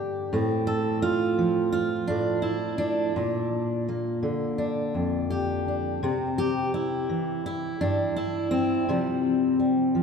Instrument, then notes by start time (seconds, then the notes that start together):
steel-string acoustic guitar
Already playing: G2 D3 A#3 D4 G4
0.33 A2 C4
0.67 A4
1.02 F4
1.39 F3
1.72 F4
2.08 A2 D4
2.42 E4
2.78 D4
3.16 A#2
3.89 A#3
4.23 D3
4.58 D4
4.94 F2
5.30 G4
5.68 D4
6.03 C3 C4
6.38 G4
6.74 E4
7.10 E3
7.46 E4
7.81 G2 D4
8.16 E4
8.51 C4
8.89 C3 F3 G3
9.60 G3
9.95 F3